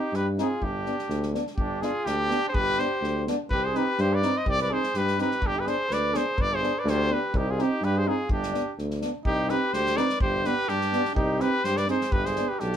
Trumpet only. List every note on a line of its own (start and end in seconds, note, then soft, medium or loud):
0.00 0.17 G4 medium
0.15 0.28 B4 medium
0.40 0.64 G#4 medium
0.63 1.35 G4 medium
1.56 1.83 G4 medium
1.81 2.07 G#4 medium
2.05 2.48 G4 loud
2.49 2.56 C5 medium
2.55 2.81 B4 loud
2.80 3.27 C5 medium
3.50 3.66 B4 medium
3.64 3.78 C5 medium
3.76 4.02 B4 medium
4.01 4.16 C5 medium
4.15 4.39 D5 medium
4.38 4.51 D#5 medium
4.50 4.61 D5 loud
4.62 4.75 D5 medium
4.73 4.99 C5 medium
4.97 5.20 B4 medium
5.21 5.48 B4 medium
5.47 5.61 G4 medium
5.59 5.70 B4 medium
5.68 5.95 C5 medium
5.93 6.18 D5 medium
6.17 6.42 C5 medium
6.41 6.56 D5 medium
6.55 6.81 C5 medium
6.79 6.91 D5 medium
6.90 7.14 C5 medium
7.13 7.39 B4 medium
7.37 7.52 G4 medium
7.50 7.63 G#4 medium
7.61 7.86 G4 medium
7.84 7.99 B4 medium
7.98 8.09 C5 medium
8.08 8.31 G#4 medium
8.32 8.75 G4 medium
9.27 9.52 G4 medium
9.50 9.75 B4 medium
9.74 9.98 C5 medium
9.97 10.21 D5 loud
10.21 10.48 C5 medium
10.46 10.70 B4 medium
10.69 11.15 G4 medium
11.15 11.43 G4 medium
11.42 11.66 B4 medium
11.64 11.79 C5 loud
11.77 11.88 D5 medium
11.90 12.14 C5 medium
12.12 12.27 B4 medium
12.25 12.50 C5 medium
12.49 12.62 B4 medium
12.60 12.77 G4 medium